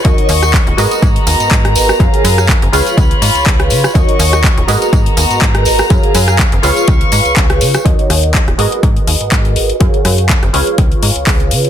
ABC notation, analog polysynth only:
X:1
M:4/4
L:1/8
Q:"Swing 16ths" 1/4=123
K:Abdor
V:1 name="Analog polysynth"
[EGBde]3 [GABce]4- [GABce] | [GABdf]3 [FAcdf]4- [FAcdf] | [EGBde]3 [GABce]4- [GABce] | [GABdf]3 [FAcdf]4- [FAcdf] |
[EGBde]3 [GABce]4- [GABce] | [GABdf]3 [FAcdf]4- [FAcdf] |]